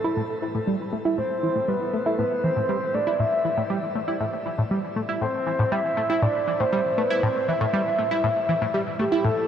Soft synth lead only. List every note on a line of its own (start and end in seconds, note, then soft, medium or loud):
0.00 0.13 A4 medium
1.18 1.70 C5 medium
1.68 2.08 B4 medium
2.06 2.20 A4 medium
2.19 2.43 B4 loud
2.44 2.96 C5 medium
2.94 3.21 D5 loud
3.20 3.70 E5 loud
5.21 5.73 C5 loud
5.72 6.24 E5 loud
6.22 6.61 D5 loud
6.60 6.99 C5 medium
6.98 7.25 B4 medium
7.23 7.50 C5 loud
7.48 8.49 E5 loud
8.99 9.26 G4 medium
9.25 9.48 A4 loud